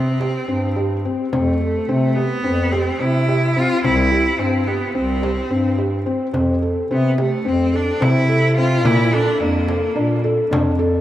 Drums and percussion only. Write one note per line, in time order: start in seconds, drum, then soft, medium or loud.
0.21 frame drum soft
1.05 frame drum soft
1.33 frame drum medium
1.89 frame drum soft
2.73 frame drum soft
3.57 frame drum soft
3.84 frame drum medium
4.96 frame drum soft
5.23 frame drum soft
6.34 frame drum medium
7.18 frame drum soft
7.46 frame drum soft
8.02 frame drum medium
8.30 frame drum soft
8.85 frame drum medium
9.69 frame drum medium
9.96 frame drum soft
10.53 frame drum medium
10.80 frame drum soft